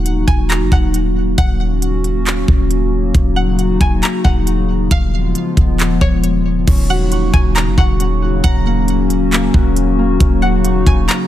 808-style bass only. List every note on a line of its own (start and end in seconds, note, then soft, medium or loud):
0.00 0.25 D#1 loud
0.28 0.62 D#1 loud
0.61 0.71 F#1 medium
0.72 1.35 D#1 loud
1.38 2.44 D#1 loud
2.48 3.12 D#1 loud
3.15 3.78 D#1 loud
3.81 4.02 D#1 loud
4.25 4.88 D#1 loud
4.91 5.33 D#1 loud
5.57 6.00 D#1 loud
6.01 6.65 D#1 loud
6.68 7.31 D#1 loud
7.34 7.68 D#1 loud
7.67 7.77 F#1 loud
7.78 8.41 D#1 loud
8.44 9.50 D#1 loud
9.54 10.18 D#1 loud
10.20 10.84 D#1 loud
10.87 11.08 D#1 loud